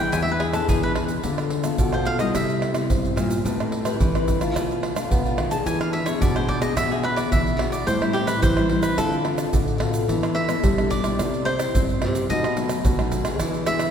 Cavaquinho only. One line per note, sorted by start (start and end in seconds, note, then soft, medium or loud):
0.00 0.12 G5 medium
0.12 0.22 G#5 medium
0.22 0.31 E5 medium
0.31 0.40 B4 medium
0.40 0.53 G#4 medium
0.53 0.67 A4 medium
0.69 0.82 G#4 medium
0.83 0.91 B4 medium
1.94 2.07 C5 medium
2.06 2.19 F5 loud
2.20 2.34 D#5 medium
2.35 3.14 E5 medium
5.51 5.65 A5 medium
5.66 5.80 G#5 medium
5.81 5.93 F5 medium
5.93 6.07 E5 medium
6.06 6.20 C#5 medium
6.22 6.35 D5 medium
6.36 6.49 C5 medium
6.49 6.61 D5 medium
6.62 6.76 D#5 medium
6.77 6.90 E5 loud
6.91 7.04 G#4 medium
7.04 7.18 B4 medium
7.16 7.31 D5 medium
7.32 7.70 E5 medium
7.72 7.86 D5 medium
7.87 8.00 C5 medium
8.02 8.15 E4 soft
8.13 8.28 G4 medium
8.27 8.41 B4 medium
8.42 8.81 C5 medium
8.83 8.97 B4 medium
8.98 9.14 A4 medium
10.35 10.87 E5 medium
10.90 11.42 D5 medium
11.45 12.25 C5 medium
12.30 12.56 D#5 loud
13.67 13.91 E5 loud